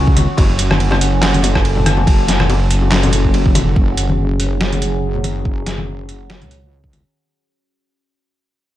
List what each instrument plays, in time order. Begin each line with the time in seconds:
Already playing: wobble bass C#2, synth drone F#3 C#4 F#4
0.07 kick
0.16 closed hi-hat, high bongo, high conga
0.37 wobble bass F#1, synth drone A4, kick, ride, high bongo
0.59 closed hi-hat
0.70 cross-stick, high bongo, high conga
0.80 ride
0.91 cross-stick, high bongo
1.01 closed hi-hat
1.22 snare, clap, ride, high bongo
1.33 closed hi-hat, high conga
1.43 closed hi-hat, high bongo
1.55 kick, cross-stick
1.65 ride
1.76 high bongo, low conga
1.85 cross-stick, closed hi-hat, high conga
1.97 high bongo
2.07 wobble bass F#1, kick, ride
2.27 snare, closed hi-hat, high bongo
2.39 cross-stick, high conga, low conga
2.50 ride, high bongo
2.71 closed hi-hat
2.82 high bongo
2.92 snare, clap, ride
3.03 closed hi-hat, high bongo, high conga, low conga
3.13 closed hi-hat
3.24 kick
3.34 ride, high bongo
3.46 kick
3.55 wobble bass E1, closed hi-hat, high bongo, high conga
3.67 wobble bass F#1
3.76 wobble bass F#1, synth drone F#3 C#4 G#4, kick
3.97 closed hi-hat
4.09 high conga
4.40 closed hi-hat
4.61 snare
4.72 closed hi-hat, high conga
4.82 closed hi-hat
5.15 low conga
5.24 closed hi-hat, high conga
5.45 wobble bass F#1, kick
5.66 snare, closed hi-hat
5.78 high conga, low conga
6.09 closed hi-hat
6.30 snare
6.41 wobble bass C#2, closed hi-hat, high conga, low conga
6.51 closed hi-hat
6.84 kick
6.93 closed hi-hat, high conga